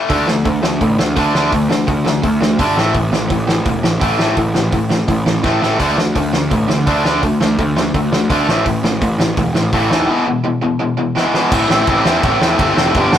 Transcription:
0.09 D2 D3 A3 D4, kick, open hi-hat
0.27 D2 D3 A3, snare
0.45 D2 D3 A3, kick, open hi-hat
0.62 D2 D3 A3, snare
0.81 A1 D3 A3, kick, open hi-hat
0.99 D2 D3 A3, snare
1.16 D2 D3 A3 D4, kick, open hi-hat
1.34 D2 D3 A3 D4, snare
1.52 D2 D3 A3, kick, open hi-hat
1.69 D2 D3 A3, snare
1.87 D2 D3 A3, kick, open hi-hat
2.05 D3 A3, snare
2.22 D2 D3 A3, kick, open hi-hat
2.41 D2 D3 A3, snare
2.58 G1 D3 A3 D4, kick, open hi-hat
2.76 A1 A2 E3 A3, snare
2.93 A1 A2 E3, kick, open hi-hat
3.12 A1 A2 E3, snare
3.29 A1 A2 E3, kick, open hi-hat
3.47 A1 A2 E3, snare
3.65 E1 A2 E3, kick, open hi-hat
3.83 A1 A2 E3, snare
4.00 A1 A2 E3 A3, kick, open hi-hat
4.18 A1 A2 E3 A3, snare
4.37 A1 A2 E3, kick, open hi-hat
4.54 A1 A2 E3, snare
4.72 A1 A2 E3, kick, open hi-hat
4.89 A2 E3, snare
5.08 A1 A2 E3, kick, open hi-hat
5.26 A1 A2 E3, snare
5.43 A1 A2 E3 A3, kick, snare
5.61 A1 A2 E3 A3, snare
5.79 D2 D3 A3 D4, kick, open hi-hat, splash
5.97 D2 D3 A3, snare
6.15 D2 D3 A3, kick, open hi-hat
6.33 D2 D3 A3, snare
6.50 A1 D3 A3, kick, open hi-hat
6.68 D2 D3 A3, snare
6.86 D2 D3 A3 D4, kick, open hi-hat
7.04 D2 D3 A3 D4, snare
7.22 D2 D3 A3, kick, open hi-hat
7.40 D2 D3 A3, snare
7.58 D2 D3 A3, kick, open hi-hat
7.76 D3 A3, snare
7.94 D2 D3 A3, kick, open hi-hat
8.12 D2 D3 A3, snare
8.30 D2 D3 A3 D4, kick, open hi-hat
8.47 A1 A2 E3 A3, snare
8.66 A1 A2 E3, kick, open hi-hat
8.83 A1 A2 E3, snare
9.01 A1 A2 E3, kick, open hi-hat
9.19 A1 A2 E3, snare
9.37 E1 A2 E3, kick, open hi-hat
9.55 A1 A2 E3, snare
9.72 A1 A2 E3 A3, kick, open hi-hat
9.90 D#2 A2 E3 A3, snare
10.08 E2 B2 E3 G#3 B3
10.26 E2 B2 E3 G#3
10.44 E2 B2 E3 G#3
10.62 E2 B2 E3 G#3
10.79 E2 B2 E3 G#3
10.97 E2 B2 E3 G#3
11.15 E2 B2 E3 G#3 B3, snare
11.33 E2 B2 E3 G#3 B3, snare
11.51 A1 A2 E3 A3 C4 E4, kick, crash
11.69 A1 A2 E3 A3 C4 E4, snare
11.87 A1 A2 E3 A3 C4 E4, kick, crash
12.05 E2 A2 E3 A3 C4 E4, snare
12.23 A1 A2 E3 A3 C4 E4, kick, crash
12.40 E2 A2 E3 A3 C4 E4, snare
12.59 G1 A2 E3 A3 C4 E4, kick, crash
12.77 F1 A2 E3 A3 C4 E4, snare
12.95 G1 G2 D3 G3 B3 D4, kick, crash
13.12 G1 G2 D3 G3 B3 D4, snare

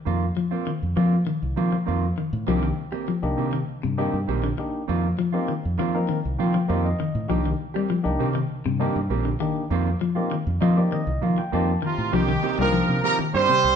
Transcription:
0.05 F2 D#3 A#3 F4, muted clean electric guitar stroke
0.37 F3
0.51 A#3 C4 F4
0.67 D#3
0.83 F2
0.96 F3 A#3 C4 F4
1.27 D#3
1.43 C2
1.56 D#3 F3 A#3 C4 F4
1.72 F3
1.86 F2 D#3 A#3 C4 F4
2.18 D#3
2.33 A2
2.47 C2 D#3 F3 A#3 C4 D4 D#4 G4
2.63 D#3
2.92 A#3 C4 G4, muted clean electric guitar stroke
3.08 F3
3.22 C2 A#3 D4 D#4 G4
3.37 C3 D#3 A#3 C4 G4
3.53 D#3
3.83 G2 C3
3.98 D#3 A#3 C4 D4 D#4 G4, muted clean electric guitar stroke
4.13 G2
4.28 A#1 D#3 A#3 C4 G4
4.44 D3
4.58 A#3 D4 D#4 G4, muted clean electric guitar stroke
4.88 F2 D#3 A#3 C4 F4
5.19 F3
5.33 A#3 C4 D#4 F4 G4
5.48 D#3
5.65 F2
5.78 D#3 F3 A#3 C4 F4
5.94 A#3 C4 D#4 A#4
6.09 D#3
6.25 C2
6.39 D#3 F3 A#3 C4 F4 G5
6.54 F3
6.68 F2 D#3 A#3 C4 D#4 F4 G4 F5
6.85 D#5
7.00 D#3
7.15 A2
7.28 C2 D#3 F3 A#3 D4 D#4 G4, muted clean electric guitar stroke
7.46 D#3
7.74 G3 A#3 C4 G4
7.90 F3
8.03 C2 A#3 D4 D#4 G4
8.19 C3 D#3 A#3 C4 G4
8.35 D#3
8.65 G2 C3
8.79 D#3 A#3 C4 D4 D#4 G4
8.96 G2
9.10 A#1 D#3 A#3 C4 G4
9.25 D3
9.40 D#3 A#3 D4 D#4 G4
9.70 F2 D#3 A#3 C4 F4
10.01 F3
10.15 A#3 C4 D#4 F4 G4
10.31 D#3
10.47 F2
10.60 D#3 F3 A#3 C4 F4 D#5
10.77 A#3 C4 D#4 G4 D5
10.92 D#3 D#5
11.07 C2
11.22 D#3 F3 A#3 F4 F5, muted clean electric guitar stroke
11.38 G5, muted clean electric guitar stroke
11.52 F2 D#3 A#3 C4 D#4 F4 G4 A5
11.82 C3 D#3 F4 A#5
11.98 A2
12.12 C2 D#3 F3 A#3 C4 D4 D#4 G4
12.29 D#3
12.43 D#3 A#3 C4 G4
12.58 C2 F3 G3 A#3 D4 D#4 G4 A#4
12.73 F3
12.89 C3
13.03 D#3 F3 A#3 C4 G4 A#4
13.19 D#3, muted fingered electric bass stroke
13.34 G2 D#3 G3 A#3 C4 G4 C5
13.49 C3
13.64 C2

